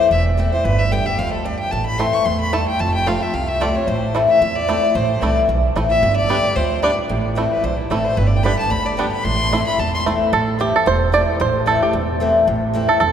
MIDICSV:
0, 0, Header, 1, 5, 480
1, 0, Start_track
1, 0, Key_signature, 0, "minor"
1, 0, Tempo, 268938
1, 1148, Time_signature, 4, 2, 24, 8
1, 23420, End_track
2, 0, Start_track
2, 0, Title_t, "Fiddle"
2, 0, Program_c, 0, 110
2, 205, Note_on_c, 0, 76, 90
2, 357, Note_off_c, 0, 76, 0
2, 932, Note_on_c, 0, 72, 89
2, 1144, Note_on_c, 0, 71, 93
2, 1171, Note_off_c, 0, 72, 0
2, 1409, Note_on_c, 0, 76, 103
2, 1436, Note_off_c, 0, 71, 0
2, 1634, Note_on_c, 0, 79, 98
2, 1661, Note_off_c, 0, 76, 0
2, 1890, Note_on_c, 0, 76, 97
2, 1917, Note_off_c, 0, 79, 0
2, 2111, Note_on_c, 0, 77, 94
2, 2137, Note_off_c, 0, 76, 0
2, 2359, Note_off_c, 0, 77, 0
2, 2370, Note_on_c, 0, 69, 49
2, 2586, Note_on_c, 0, 74, 84
2, 2612, Note_off_c, 0, 69, 0
2, 2832, Note_off_c, 0, 74, 0
2, 2842, Note_on_c, 0, 79, 88
2, 3052, Note_on_c, 0, 81, 89
2, 3079, Note_off_c, 0, 79, 0
2, 3307, Note_off_c, 0, 81, 0
2, 3318, Note_on_c, 0, 83, 100
2, 3538, Note_on_c, 0, 84, 92
2, 3565, Note_off_c, 0, 83, 0
2, 3801, Note_on_c, 0, 85, 100
2, 3828, Note_off_c, 0, 84, 0
2, 4014, Note_on_c, 0, 84, 95
2, 4041, Note_off_c, 0, 85, 0
2, 4279, Note_off_c, 0, 84, 0
2, 4290, Note_on_c, 0, 83, 102
2, 4517, Note_on_c, 0, 81, 95
2, 4544, Note_off_c, 0, 83, 0
2, 4776, Note_off_c, 0, 81, 0
2, 4785, Note_on_c, 0, 79, 102
2, 4994, Note_on_c, 0, 81, 100
2, 5020, Note_off_c, 0, 79, 0
2, 5246, Note_off_c, 0, 81, 0
2, 5257, Note_on_c, 0, 79, 114
2, 5487, Note_on_c, 0, 77, 95
2, 5514, Note_off_c, 0, 79, 0
2, 5752, Note_on_c, 0, 76, 86
2, 5778, Note_off_c, 0, 77, 0
2, 5957, Note_on_c, 0, 77, 86
2, 5984, Note_off_c, 0, 76, 0
2, 6220, Note_on_c, 0, 76, 96
2, 6247, Note_off_c, 0, 77, 0
2, 6449, Note_on_c, 0, 74, 84
2, 6475, Note_off_c, 0, 76, 0
2, 6705, Note_on_c, 0, 73, 89
2, 6732, Note_off_c, 0, 74, 0
2, 6910, Note_on_c, 0, 72, 81
2, 6937, Note_off_c, 0, 73, 0
2, 7392, Note_off_c, 0, 72, 0
2, 7656, Note_on_c, 0, 76, 87
2, 8130, Note_on_c, 0, 74, 98
2, 8157, Note_off_c, 0, 76, 0
2, 8837, Note_on_c, 0, 72, 86
2, 8863, Note_off_c, 0, 74, 0
2, 9316, Note_on_c, 0, 74, 90
2, 9343, Note_off_c, 0, 72, 0
2, 9577, Note_off_c, 0, 74, 0
2, 10530, Note_on_c, 0, 76, 98
2, 10979, Note_off_c, 0, 76, 0
2, 11000, Note_on_c, 0, 74, 118
2, 11706, Note_on_c, 0, 72, 97
2, 11733, Note_off_c, 0, 74, 0
2, 12171, Note_off_c, 0, 72, 0
2, 12181, Note_on_c, 0, 74, 96
2, 12342, Note_off_c, 0, 74, 0
2, 13414, Note_on_c, 0, 71, 74
2, 13644, Note_on_c, 0, 72, 83
2, 13671, Note_off_c, 0, 71, 0
2, 13887, Note_off_c, 0, 72, 0
2, 13897, Note_on_c, 0, 64, 45
2, 14108, Note_on_c, 0, 69, 80
2, 14135, Note_off_c, 0, 64, 0
2, 14369, Note_on_c, 0, 72, 93
2, 14396, Note_off_c, 0, 69, 0
2, 14584, Note_on_c, 0, 71, 85
2, 14611, Note_off_c, 0, 72, 0
2, 14755, Note_on_c, 0, 74, 75
2, 14782, Note_off_c, 0, 71, 0
2, 14926, Note_on_c, 0, 79, 96
2, 14953, Note_off_c, 0, 74, 0
2, 15053, Note_on_c, 0, 83, 117
2, 15080, Note_off_c, 0, 79, 0
2, 15319, Note_off_c, 0, 83, 0
2, 15330, Note_on_c, 0, 81, 98
2, 15542, Note_on_c, 0, 83, 98
2, 15569, Note_off_c, 0, 81, 0
2, 15803, Note_on_c, 0, 74, 80
2, 15830, Note_off_c, 0, 83, 0
2, 16024, Note_on_c, 0, 79, 87
2, 16051, Note_off_c, 0, 74, 0
2, 16266, Note_off_c, 0, 79, 0
2, 16277, Note_on_c, 0, 83, 100
2, 16480, Note_on_c, 0, 84, 120
2, 16506, Note_off_c, 0, 83, 0
2, 17237, Note_off_c, 0, 84, 0
2, 17255, Note_on_c, 0, 83, 94
2, 17477, Note_on_c, 0, 81, 90
2, 17504, Note_off_c, 0, 83, 0
2, 17735, Note_off_c, 0, 81, 0
2, 17746, Note_on_c, 0, 84, 108
2, 17872, Note_off_c, 0, 84, 0
2, 23420, End_track
3, 0, Start_track
3, 0, Title_t, "Five-string banjo"
3, 0, Program_c, 1, 105
3, 3561, Note_on_c, 1, 57, 67
3, 3575, Note_on_c, 1, 64, 63
3, 3610, Note_off_c, 1, 64, 0
3, 3672, Note_off_c, 1, 57, 0
3, 4514, Note_on_c, 1, 57, 70
3, 4524, Note_on_c, 1, 64, 66
3, 4560, Note_off_c, 1, 64, 0
3, 4629, Note_off_c, 1, 57, 0
3, 5479, Note_on_c, 1, 57, 62
3, 5495, Note_on_c, 1, 65, 68
3, 5531, Note_off_c, 1, 65, 0
3, 5593, Note_off_c, 1, 57, 0
3, 6447, Note_on_c, 1, 57, 66
3, 6457, Note_on_c, 1, 65, 69
3, 6492, Note_off_c, 1, 65, 0
3, 6555, Note_off_c, 1, 57, 0
3, 7400, Note_on_c, 1, 57, 70
3, 7415, Note_on_c, 1, 64, 61
3, 7450, Note_off_c, 1, 64, 0
3, 7513, Note_off_c, 1, 57, 0
3, 8365, Note_on_c, 1, 57, 67
3, 8372, Note_on_c, 1, 64, 65
3, 8408, Note_off_c, 1, 64, 0
3, 8475, Note_off_c, 1, 57, 0
3, 9325, Note_on_c, 1, 57, 62
3, 9332, Note_on_c, 1, 64, 65
3, 9367, Note_off_c, 1, 64, 0
3, 9435, Note_off_c, 1, 57, 0
3, 10284, Note_on_c, 1, 57, 62
3, 10290, Note_on_c, 1, 64, 65
3, 10326, Note_off_c, 1, 64, 0
3, 10395, Note_off_c, 1, 57, 0
3, 11239, Note_on_c, 1, 59, 69
3, 11248, Note_on_c, 1, 62, 58
3, 11249, Note_on_c, 1, 67, 64
3, 11352, Note_off_c, 1, 59, 0
3, 11355, Note_off_c, 1, 62, 0
3, 11356, Note_off_c, 1, 67, 0
3, 12192, Note_on_c, 1, 59, 73
3, 12203, Note_on_c, 1, 62, 68
3, 12203, Note_on_c, 1, 67, 70
3, 12308, Note_off_c, 1, 59, 0
3, 12312, Note_off_c, 1, 62, 0
3, 12313, Note_off_c, 1, 67, 0
3, 13163, Note_on_c, 1, 57, 64
3, 13172, Note_on_c, 1, 64, 65
3, 13208, Note_off_c, 1, 64, 0
3, 13274, Note_off_c, 1, 57, 0
3, 14116, Note_on_c, 1, 57, 70
3, 14125, Note_on_c, 1, 64, 67
3, 14161, Note_off_c, 1, 64, 0
3, 14229, Note_off_c, 1, 57, 0
3, 15082, Note_on_c, 1, 59, 62
3, 15093, Note_on_c, 1, 62, 63
3, 15093, Note_on_c, 1, 67, 64
3, 15193, Note_off_c, 1, 59, 0
3, 15196, Note_off_c, 1, 62, 0
3, 15197, Note_off_c, 1, 67, 0
3, 16041, Note_on_c, 1, 59, 68
3, 16051, Note_on_c, 1, 62, 69
3, 16060, Note_on_c, 1, 67, 70
3, 16153, Note_off_c, 1, 59, 0
3, 16155, Note_off_c, 1, 62, 0
3, 16157, Note_off_c, 1, 67, 0
3, 17004, Note_on_c, 1, 57, 59
3, 17012, Note_on_c, 1, 64, 68
3, 17048, Note_off_c, 1, 64, 0
3, 17112, Note_off_c, 1, 57, 0
3, 17961, Note_on_c, 1, 57, 72
3, 17969, Note_on_c, 1, 64, 66
3, 18005, Note_off_c, 1, 64, 0
3, 18071, Note_off_c, 1, 57, 0
3, 18438, Note_on_c, 1, 69, 84
3, 18927, Note_off_c, 1, 69, 0
3, 18931, Note_on_c, 1, 67, 85
3, 19189, Note_off_c, 1, 67, 0
3, 19200, Note_on_c, 1, 69, 85
3, 19405, Note_on_c, 1, 72, 95
3, 19409, Note_off_c, 1, 69, 0
3, 19870, Note_off_c, 1, 72, 0
3, 19877, Note_on_c, 1, 74, 113
3, 20360, Note_off_c, 1, 74, 0
3, 20367, Note_on_c, 1, 72, 90
3, 20834, Note_on_c, 1, 69, 91
3, 20851, Note_off_c, 1, 72, 0
3, 21074, Note_off_c, 1, 69, 0
3, 21106, Note_on_c, 1, 67, 74
3, 21300, Note_off_c, 1, 67, 0
3, 22999, Note_on_c, 1, 69, 89
3, 23183, Note_off_c, 1, 69, 0
3, 23204, Note_on_c, 1, 69, 88
3, 23420, Note_off_c, 1, 69, 0
3, 23420, End_track
4, 0, Start_track
4, 0, Title_t, "Steel-string acoustic guitar"
4, 0, Program_c, 2, 25
4, 0, Note_on_c, 2, 64, 89
4, 182, Note_off_c, 2, 64, 0
4, 198, Note_on_c, 2, 40, 93
4, 667, Note_on_c, 2, 52, 83
4, 682, Note_on_c, 2, 57, 82
4, 691, Note_on_c, 2, 60, 86
4, 705, Note_on_c, 2, 64, 100
4, 913, Note_off_c, 2, 64, 0
4, 919, Note_off_c, 2, 52, 0
4, 926, Note_off_c, 2, 57, 0
4, 931, Note_off_c, 2, 60, 0
4, 935, Note_on_c, 2, 64, 59
4, 973, Note_on_c, 2, 60, 51
4, 1110, Note_off_c, 2, 40, 0
4, 1142, Note_off_c, 2, 64, 0
4, 1160, Note_off_c, 2, 60, 0
4, 1163, Note_on_c, 2, 43, 87
4, 1632, Note_on_c, 2, 50, 82
4, 1643, Note_on_c, 2, 55, 87
4, 1654, Note_on_c, 2, 59, 93
4, 1666, Note_on_c, 2, 67, 87
4, 1865, Note_off_c, 2, 67, 0
4, 1882, Note_off_c, 2, 50, 0
4, 1887, Note_on_c, 2, 67, 58
4, 1888, Note_off_c, 2, 55, 0
4, 1893, Note_off_c, 2, 59, 0
4, 1925, Note_on_c, 2, 59, 48
4, 2073, Note_off_c, 2, 43, 0
4, 2098, Note_off_c, 2, 67, 0
4, 2117, Note_off_c, 2, 59, 0
4, 2121, Note_on_c, 2, 41, 88
4, 2573, Note_off_c, 2, 41, 0
4, 2597, Note_on_c, 2, 43, 85
4, 3052, Note_off_c, 2, 43, 0
4, 3076, Note_on_c, 2, 45, 82
4, 3535, Note_on_c, 2, 52, 82
4, 3552, Note_on_c, 2, 57, 83
4, 3561, Note_on_c, 2, 60, 94
4, 3574, Note_on_c, 2, 64, 90
4, 3990, Note_off_c, 2, 45, 0
4, 4001, Note_off_c, 2, 52, 0
4, 4010, Note_off_c, 2, 57, 0
4, 4014, Note_off_c, 2, 60, 0
4, 4021, Note_off_c, 2, 64, 0
4, 4022, Note_on_c, 2, 45, 82
4, 4485, Note_off_c, 2, 45, 0
4, 4513, Note_on_c, 2, 43, 85
4, 4970, Note_off_c, 2, 43, 0
4, 4984, Note_on_c, 2, 41, 95
4, 5465, Note_on_c, 2, 53, 83
4, 5478, Note_on_c, 2, 57, 91
4, 5492, Note_on_c, 2, 60, 99
4, 5506, Note_on_c, 2, 65, 93
4, 5700, Note_off_c, 2, 65, 0
4, 5720, Note_off_c, 2, 53, 0
4, 5722, Note_on_c, 2, 65, 55
4, 5727, Note_off_c, 2, 57, 0
4, 5734, Note_off_c, 2, 60, 0
4, 5761, Note_on_c, 2, 60, 44
4, 5905, Note_off_c, 2, 41, 0
4, 5937, Note_off_c, 2, 65, 0
4, 5954, Note_on_c, 2, 48, 79
4, 5957, Note_off_c, 2, 60, 0
4, 6428, Note_on_c, 2, 53, 82
4, 6439, Note_on_c, 2, 57, 80
4, 6450, Note_on_c, 2, 60, 93
4, 6462, Note_on_c, 2, 65, 94
4, 6664, Note_off_c, 2, 65, 0
4, 6682, Note_off_c, 2, 53, 0
4, 6685, Note_on_c, 2, 65, 66
4, 6688, Note_off_c, 2, 57, 0
4, 6693, Note_off_c, 2, 60, 0
4, 6725, Note_on_c, 2, 60, 50
4, 6870, Note_off_c, 2, 48, 0
4, 6899, Note_off_c, 2, 65, 0
4, 6919, Note_off_c, 2, 60, 0
4, 6920, Note_on_c, 2, 45, 89
4, 7397, Note_on_c, 2, 52, 74
4, 7407, Note_on_c, 2, 57, 80
4, 7419, Note_on_c, 2, 60, 89
4, 7432, Note_on_c, 2, 64, 89
4, 7833, Note_off_c, 2, 45, 0
4, 7853, Note_off_c, 2, 52, 0
4, 7859, Note_off_c, 2, 57, 0
4, 7865, Note_off_c, 2, 60, 0
4, 7871, Note_off_c, 2, 64, 0
4, 7882, Note_on_c, 2, 40, 91
4, 8349, Note_on_c, 2, 52, 73
4, 8362, Note_on_c, 2, 57, 93
4, 8372, Note_on_c, 2, 60, 88
4, 8384, Note_on_c, 2, 64, 97
4, 8585, Note_off_c, 2, 64, 0
4, 8603, Note_off_c, 2, 52, 0
4, 8606, Note_on_c, 2, 64, 55
4, 8609, Note_off_c, 2, 57, 0
4, 8614, Note_off_c, 2, 60, 0
4, 8647, Note_on_c, 2, 60, 49
4, 8794, Note_off_c, 2, 40, 0
4, 8820, Note_off_c, 2, 64, 0
4, 8837, Note_on_c, 2, 45, 85
4, 8841, Note_off_c, 2, 60, 0
4, 9301, Note_on_c, 2, 52, 76
4, 9314, Note_on_c, 2, 57, 83
4, 9322, Note_on_c, 2, 60, 97
4, 9339, Note_on_c, 2, 64, 102
4, 9752, Note_off_c, 2, 45, 0
4, 9765, Note_off_c, 2, 52, 0
4, 9772, Note_off_c, 2, 57, 0
4, 9776, Note_off_c, 2, 60, 0
4, 9784, Note_off_c, 2, 64, 0
4, 9796, Note_on_c, 2, 40, 78
4, 10272, Note_on_c, 2, 52, 82
4, 10286, Note_on_c, 2, 57, 83
4, 10297, Note_on_c, 2, 60, 87
4, 10304, Note_on_c, 2, 64, 98
4, 10505, Note_off_c, 2, 64, 0
4, 10524, Note_off_c, 2, 52, 0
4, 10526, Note_on_c, 2, 64, 52
4, 10531, Note_off_c, 2, 57, 0
4, 10537, Note_off_c, 2, 60, 0
4, 10560, Note_on_c, 2, 60, 49
4, 10711, Note_off_c, 2, 40, 0
4, 10740, Note_off_c, 2, 64, 0
4, 10757, Note_off_c, 2, 60, 0
4, 10759, Note_on_c, 2, 43, 92
4, 11219, Note_on_c, 2, 50, 88
4, 11235, Note_on_c, 2, 55, 80
4, 11248, Note_on_c, 2, 59, 82
4, 11258, Note_on_c, 2, 67, 91
4, 11672, Note_off_c, 2, 43, 0
4, 11684, Note_off_c, 2, 50, 0
4, 11692, Note_off_c, 2, 55, 0
4, 11699, Note_off_c, 2, 59, 0
4, 11703, Note_off_c, 2, 67, 0
4, 11703, Note_on_c, 2, 41, 84
4, 12166, Note_off_c, 2, 41, 0
4, 12180, Note_on_c, 2, 43, 83
4, 12644, Note_off_c, 2, 43, 0
4, 12663, Note_on_c, 2, 45, 92
4, 13123, Note_on_c, 2, 52, 79
4, 13139, Note_on_c, 2, 57, 91
4, 13153, Note_on_c, 2, 60, 89
4, 13164, Note_on_c, 2, 64, 100
4, 13583, Note_off_c, 2, 45, 0
4, 13596, Note_off_c, 2, 52, 0
4, 13603, Note_off_c, 2, 57, 0
4, 13611, Note_off_c, 2, 60, 0
4, 13616, Note_off_c, 2, 64, 0
4, 13631, Note_on_c, 2, 40, 87
4, 14100, Note_on_c, 2, 52, 75
4, 14115, Note_on_c, 2, 57, 75
4, 14125, Note_on_c, 2, 60, 95
4, 14135, Note_on_c, 2, 64, 88
4, 14547, Note_off_c, 2, 40, 0
4, 14564, Note_off_c, 2, 52, 0
4, 14571, Note_off_c, 2, 57, 0
4, 14576, Note_off_c, 2, 60, 0
4, 14581, Note_off_c, 2, 64, 0
4, 14583, Note_on_c, 2, 43, 85
4, 15048, Note_on_c, 2, 50, 81
4, 15059, Note_on_c, 2, 55, 81
4, 15069, Note_on_c, 2, 59, 88
4, 15079, Note_on_c, 2, 67, 83
4, 15503, Note_off_c, 2, 43, 0
4, 15508, Note_off_c, 2, 50, 0
4, 15523, Note_off_c, 2, 55, 0
4, 15528, Note_off_c, 2, 59, 0
4, 15530, Note_on_c, 2, 50, 87
4, 15533, Note_off_c, 2, 67, 0
4, 15988, Note_off_c, 2, 50, 0
4, 16009, Note_on_c, 2, 50, 88
4, 16023, Note_on_c, 2, 55, 81
4, 16036, Note_on_c, 2, 59, 97
4, 16042, Note_on_c, 2, 67, 91
4, 16478, Note_off_c, 2, 50, 0
4, 16485, Note_off_c, 2, 55, 0
4, 16491, Note_off_c, 2, 59, 0
4, 16494, Note_off_c, 2, 67, 0
4, 16508, Note_on_c, 2, 45, 87
4, 16978, Note_on_c, 2, 52, 85
4, 16992, Note_on_c, 2, 57, 84
4, 17003, Note_on_c, 2, 60, 94
4, 17012, Note_on_c, 2, 64, 102
4, 17225, Note_off_c, 2, 64, 0
4, 17235, Note_off_c, 2, 52, 0
4, 17242, Note_off_c, 2, 57, 0
4, 17246, Note_on_c, 2, 64, 62
4, 17248, Note_off_c, 2, 60, 0
4, 17285, Note_on_c, 2, 60, 51
4, 17425, Note_off_c, 2, 45, 0
4, 17458, Note_off_c, 2, 64, 0
4, 17478, Note_off_c, 2, 60, 0
4, 17481, Note_on_c, 2, 40, 81
4, 17958, Note_on_c, 2, 52, 79
4, 17966, Note_on_c, 2, 57, 79
4, 17980, Note_on_c, 2, 60, 91
4, 17990, Note_on_c, 2, 64, 94
4, 18391, Note_off_c, 2, 40, 0
4, 18411, Note_off_c, 2, 52, 0
4, 18415, Note_off_c, 2, 57, 0
4, 18422, Note_off_c, 2, 60, 0
4, 18427, Note_off_c, 2, 64, 0
4, 18431, Note_on_c, 2, 45, 94
4, 18895, Note_on_c, 2, 52, 83
4, 18914, Note_on_c, 2, 57, 79
4, 18919, Note_on_c, 2, 60, 98
4, 18936, Note_on_c, 2, 64, 96
4, 19346, Note_off_c, 2, 45, 0
4, 19360, Note_off_c, 2, 52, 0
4, 19369, Note_off_c, 2, 57, 0
4, 19371, Note_off_c, 2, 60, 0
4, 19380, Note_off_c, 2, 64, 0
4, 19385, Note_on_c, 2, 40, 88
4, 19852, Note_on_c, 2, 52, 85
4, 19869, Note_on_c, 2, 57, 94
4, 19884, Note_on_c, 2, 60, 79
4, 19891, Note_on_c, 2, 64, 84
4, 20302, Note_off_c, 2, 40, 0
4, 20317, Note_off_c, 2, 52, 0
4, 20326, Note_off_c, 2, 57, 0
4, 20333, Note_off_c, 2, 60, 0
4, 20337, Note_off_c, 2, 64, 0
4, 20342, Note_on_c, 2, 45, 95
4, 20808, Note_on_c, 2, 52, 87
4, 20821, Note_on_c, 2, 57, 94
4, 20836, Note_on_c, 2, 60, 94
4, 20849, Note_on_c, 2, 64, 91
4, 21260, Note_off_c, 2, 45, 0
4, 21275, Note_off_c, 2, 52, 0
4, 21282, Note_off_c, 2, 57, 0
4, 21289, Note_off_c, 2, 60, 0
4, 21296, Note_off_c, 2, 64, 0
4, 21297, Note_on_c, 2, 40, 85
4, 21777, Note_on_c, 2, 52, 86
4, 21791, Note_on_c, 2, 57, 87
4, 21800, Note_on_c, 2, 60, 96
4, 21812, Note_on_c, 2, 64, 96
4, 22217, Note_off_c, 2, 40, 0
4, 22239, Note_off_c, 2, 52, 0
4, 22246, Note_off_c, 2, 57, 0
4, 22251, Note_off_c, 2, 60, 0
4, 22257, Note_off_c, 2, 64, 0
4, 22265, Note_on_c, 2, 45, 92
4, 22730, Note_on_c, 2, 52, 88
4, 22748, Note_on_c, 2, 57, 88
4, 22760, Note_on_c, 2, 60, 98
4, 22773, Note_on_c, 2, 64, 92
4, 23181, Note_off_c, 2, 45, 0
4, 23196, Note_off_c, 2, 52, 0
4, 23205, Note_off_c, 2, 57, 0
4, 23211, Note_off_c, 2, 60, 0
4, 23217, Note_off_c, 2, 64, 0
4, 23220, Note_on_c, 2, 40, 85
4, 23420, Note_off_c, 2, 40, 0
4, 23420, End_track
5, 0, Start_track
5, 0, Title_t, "Upright bass"
5, 0, Program_c, 3, 32
5, 188, Note_on_c, 3, 28, 89
5, 833, Note_off_c, 3, 28, 0
5, 1153, Note_on_c, 3, 31, 95
5, 1797, Note_off_c, 3, 31, 0
5, 2114, Note_on_c, 3, 38, 80
5, 2758, Note_off_c, 3, 38, 0
5, 3073, Note_on_c, 3, 33, 85
5, 3718, Note_off_c, 3, 33, 0
5, 4029, Note_on_c, 3, 40, 78
5, 4675, Note_off_c, 3, 40, 0
5, 4999, Note_on_c, 3, 29, 96
5, 5642, Note_off_c, 3, 29, 0
5, 5951, Note_on_c, 3, 36, 85
5, 6597, Note_off_c, 3, 36, 0
5, 6911, Note_on_c, 3, 33, 96
5, 7556, Note_off_c, 3, 33, 0
5, 7866, Note_on_c, 3, 40, 85
5, 8513, Note_off_c, 3, 40, 0
5, 8833, Note_on_c, 3, 33, 102
5, 9155, Note_off_c, 3, 33, 0
5, 9308, Note_on_c, 3, 36, 85
5, 9718, Note_off_c, 3, 36, 0
5, 9792, Note_on_c, 3, 35, 89
5, 10200, Note_off_c, 3, 35, 0
5, 10277, Note_on_c, 3, 33, 80
5, 10683, Note_off_c, 3, 33, 0
5, 10751, Note_on_c, 3, 31, 92
5, 11396, Note_off_c, 3, 31, 0
5, 11709, Note_on_c, 3, 38, 84
5, 12355, Note_off_c, 3, 38, 0
5, 12666, Note_on_c, 3, 33, 97
5, 13313, Note_off_c, 3, 33, 0
5, 13630, Note_on_c, 3, 35, 81
5, 14039, Note_off_c, 3, 35, 0
5, 14107, Note_on_c, 3, 33, 85
5, 14517, Note_off_c, 3, 33, 0
5, 14584, Note_on_c, 3, 31, 97
5, 15231, Note_off_c, 3, 31, 0
5, 15545, Note_on_c, 3, 38, 86
5, 16192, Note_off_c, 3, 38, 0
5, 16503, Note_on_c, 3, 33, 96
5, 17150, Note_off_c, 3, 33, 0
5, 17465, Note_on_c, 3, 28, 89
5, 18111, Note_off_c, 3, 28, 0
5, 18429, Note_on_c, 3, 33, 98
5, 19073, Note_off_c, 3, 33, 0
5, 19388, Note_on_c, 3, 28, 87
5, 20032, Note_off_c, 3, 28, 0
5, 20345, Note_on_c, 3, 33, 98
5, 20990, Note_off_c, 3, 33, 0
5, 21302, Note_on_c, 3, 28, 88
5, 21948, Note_off_c, 3, 28, 0
5, 22264, Note_on_c, 3, 33, 98
5, 22909, Note_off_c, 3, 33, 0
5, 23226, Note_on_c, 3, 28, 90
5, 23420, Note_off_c, 3, 28, 0
5, 23420, End_track
0, 0, End_of_file